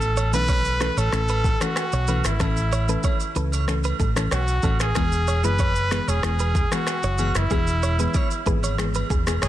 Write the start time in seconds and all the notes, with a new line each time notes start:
Already playing: A1 E3 A3 C#4 A4
0.01 shaker
0.17 C#5, high agogo, shaker
0.33 B1 E3 A3 C#4 A4 B4, shaker
0.48 C#5, kick, high agogo, shaker
0.65 shaker
0.80 E3 A3 C#4 A4 B4, finger snap, cross-stick, shaker
0.97 A1 A4 C#5, high agogo, shaker
1.12 A1 E3 A3 C#4 A4, finger snap, cross-stick, shaker
1.28 B4, high agogo, shaker
1.44 A4, kick, shaker
1.61 E3 A3 C#4 F#4 A4, finger snap, cross-stick, high agogo, shaker
1.76 finger snap, cross-stick, low woodblock, shaker
1.92 B1 C#5, shaker
2.07 E3 A3 C#4 A4 B4, high agogo, shaker
2.25 G#1 E4, finger snap, cross-stick, shaker
2.40 A1 E3 A3 C#4 A4, finger snap, kick, cross-stick, high agogo, shaker
2.57 shaker
2.72 C#5, high agogo, shaker
2.88 E3 A3 C#4 A4 B4, shaker
3.03 C#5, kick, high agogo, shaker
3.20 shaker
3.35 C#2 E3 A3 C#4 A4 B4, shaker
3.52 C#5, high agogo, shaker
3.67 E3 A3 C#4 A4, finger snap, cross-stick, shaker
3.84 B4, high agogo, shaker
4.00 A1 A4, kick, shaker
4.16 E3 A3 C#4 A4, finger snap, cross-stick, high agogo, shaker
4.31 B1 F#4 C#5, finger snap, cross-stick, low woodblock, shaker
4.48 shaker
4.63 A1 E3 A3 C#4 A4, kick, high agogo, shaker
4.80 G#4, finger snap, cross-stick, shaker
4.95 E1 E3 G#3 B3 G#4, finger snap, kick, cross-stick, high agogo, shaker
5.12 shaker
5.28 C#5, high agogo, shaker
5.44 F#1 E3 G#3 B3 G#4 B4, shaker
5.59 C#5, kick, high agogo, shaker
5.76 shaker
5.91 E3 G#3 B3 G#4 B4, finger snap, cross-stick, shaker
6.08 E1 G#4 C#5, high agogo, shaker
6.23 E1 E3 G#3 B3 G#4, finger snap, cross-stick, shaker
6.39 B4, high agogo, shaker
6.55 G#4, kick, shaker
6.71 E3 G#3 B3 F#4 G#4, finger snap, cross-stick, high agogo, shaker
6.87 finger snap, cross-stick, low woodblock, shaker
7.03 F#1 C#5, shaker
7.18 E3 G#3 B3 G#4 B4, high agogo, shaker
7.35 F#1 E4, finger snap, cross-stick, shaker
7.50 E1 E3 G#3 B3 G#4, kick, high agogo, shaker
7.67 shaker
7.83 C#5, high agogo, shaker
7.99 E3 G#3 B3 G#4 B4, shaker
8.14 C#5, kick, high agogo, shaker
8.31 shaker
8.46 G#1 E3 G#3 B3 G#4 B4, kick, shaker
8.63 C#5, high agogo, shaker
8.78 E3 G#3 B3 G#4, finger snap, cross-stick, shaker
8.94 B4, high agogo, shaker
9.10 E1 G#4, kick, shaker
9.27 E3 G#3 B3 G#4, finger snap, cross-stick, high agogo, shaker
9.42 F#1 G#4 C#5, finger snap, cross-stick, low woodblock, shaker